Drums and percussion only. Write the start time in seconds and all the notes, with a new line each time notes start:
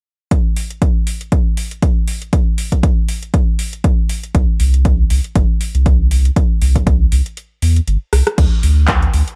0.31 kick, closed hi-hat
0.56 open hi-hat
0.70 closed hi-hat
0.82 kick, closed hi-hat
1.07 open hi-hat
1.21 closed hi-hat
1.32 kick, closed hi-hat
1.57 open hi-hat
1.71 closed hi-hat
1.82 kick, closed hi-hat
2.08 open hi-hat
2.22 closed hi-hat
2.33 kick, closed hi-hat
2.58 open hi-hat
2.72 kick, closed hi-hat
2.83 kick, closed hi-hat
3.09 open hi-hat
3.23 closed hi-hat
3.34 kick, closed hi-hat
3.59 open hi-hat
3.73 closed hi-hat
3.84 kick, closed hi-hat
4.09 open hi-hat
4.23 closed hi-hat
4.35 kick, closed hi-hat
4.60 open hi-hat
4.74 closed hi-hat
4.85 kick, closed hi-hat
5.10 open hi-hat
5.24 closed hi-hat
5.35 kick, closed hi-hat
5.61 open hi-hat
5.75 closed hi-hat
5.86 kick, closed hi-hat
6.11 open hi-hat
6.25 closed hi-hat
6.36 kick, closed hi-hat
6.62 open hi-hat
6.76 kick, closed hi-hat
6.87 kick, closed hi-hat
7.12 open hi-hat
7.26 closed hi-hat
7.37 closed hi-hat
7.62 open hi-hat
7.76 closed hi-hat
7.88 closed hi-hat
8.13 cross-stick, open hi-hat
8.27 cross-stick, closed hi-hat
8.38 kick, closed hi-hat, crash
8.63 open hi-hat
8.88 kick, clap, closed hi-hat
9.02 closed hi-hat
9.14 open hi-hat
9.28 closed hi-hat